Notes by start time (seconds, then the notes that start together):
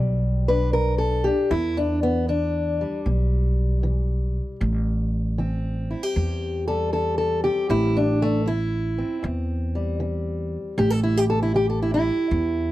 Already playing: B1 E2 G3
0.48 D4 B4
0.73 G3 A#4
0.98 A4
1.24 D4 G4
1.51 E2 E4
1.77 D4
2.03 B3
2.28 E3 D4
2.81 G3
3.06 B1 B2
3.83 E3
4.61 A1 A2
5.38 E3 C4
5.91 E4
6.03 G4
6.16 E2
6.68 G3 A4
6.93 E3 A4
7.18 A4
7.44 C4 G4
7.69 A1 A2 E4
7.97 D4
8.22 A3
8.46 E3 E4
8.98 C4
9.23 E2
9.75 G3
10.00 E3
10.78 A1 A2 G4
10.90 A4
11.03 E4
11.17 G4
11.30 A4
11.43 E4
11.54 E3 G4
11.70 A4
11.82 E4
11.94 E4
12.31 E2